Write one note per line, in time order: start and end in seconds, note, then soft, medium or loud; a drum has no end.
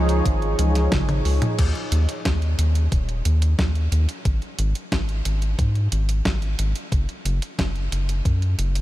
0.00 0.22 C#2 medium
0.00 1.56 F3 medium
0.00 1.56 D#4 medium
0.00 1.56 G#4 medium
0.00 1.55 C#5 medium
0.09 closed hi-hat medium
0.26 0.55 G#1 loud
0.26 kick loud
0.26 closed hi-hat medium
0.42 closed hi-hat soft
0.59 0.89 C#2 medium
0.59 closed hi-hat loud
0.59 high tom medium
0.75 snare soft
0.75 closed hi-hat medium
0.92 1.22 G#1 loud
0.92 kick loud
0.92 snare loud
0.92 closed hi-hat medium
0.92 mid tom medium
1.09 closed hi-hat soft
1.09 mid tom medium
1.25 1.40 C#2 medium
1.25 open hi-hat medium
1.42 closed hi-hat medium
1.42 mid tom medium
1.59 1.74 D#2 loud
1.59 kick loud
1.59 closed hi-hat medium
1.59 crash medium
1.75 closed hi-hat soft
1.92 2.07 D#2 loud
1.92 closed hi-hat medium
2.09 closed hi-hat medium
2.25 2.55 D#2 medium
2.25 kick loud
2.25 snare loud
2.25 closed hi-hat medium
2.42 closed hi-hat soft
2.59 2.88 D#2 medium
2.59 closed hi-hat medium
2.75 closed hi-hat medium
2.92 3.22 D#1 medium
2.92 kick loud
2.92 closed hi-hat medium
3.09 closed hi-hat soft
3.25 3.55 D#2 medium
3.25 closed hi-hat medium
3.42 closed hi-hat medium
3.59 3.88 D#2 medium
3.59 kick loud
3.59 snare loud
3.59 closed hi-hat medium
3.75 closed hi-hat soft
3.92 4.07 D#2 loud
3.92 closed hi-hat medium
4.09 closed hi-hat medium
4.25 4.40 G#1 loud
4.25 kick loud
4.25 closed hi-hat medium
4.42 closed hi-hat soft
4.59 4.74 G#1 loud
4.59 closed hi-hat medium
4.75 closed hi-hat medium
4.92 5.22 G#1 medium
4.92 kick loud
4.92 snare loud
4.92 closed hi-hat medium
5.09 closed hi-hat soft
5.25 5.55 G#1 medium
5.25 closed hi-hat medium
5.42 closed hi-hat medium
5.59 5.88 G#2 medium
5.59 kick loud
5.59 closed hi-hat medium
5.75 closed hi-hat soft
5.92 6.22 G#1 medium
5.92 closed hi-hat medium
6.09 closed hi-hat medium
6.25 6.55 G#1 medium
6.25 kick loud
6.25 snare loud
6.25 closed hi-hat medium
6.42 closed hi-hat soft
6.59 6.74 G#1 loud
6.59 closed hi-hat medium
6.76 closed hi-hat medium
6.92 7.07 F#1 loud
6.92 kick loud
6.92 closed hi-hat medium
7.09 closed hi-hat soft
7.25 7.40 F#1 loud
7.25 closed hi-hat medium
7.42 closed hi-hat medium
7.59 7.88 F#1 medium
7.59 kick loud
7.59 snare loud
7.59 closed hi-hat medium
7.76 closed hi-hat soft
7.92 8.22 F#1 medium
7.92 closed hi-hat medium
8.09 closed hi-hat medium
8.25 8.55 F#2 medium
8.25 kick loud
8.25 closed hi-hat medium
8.42 closed hi-hat soft
8.58 8.81 F#1 medium
8.58 closed hi-hat medium
8.75 closed hi-hat medium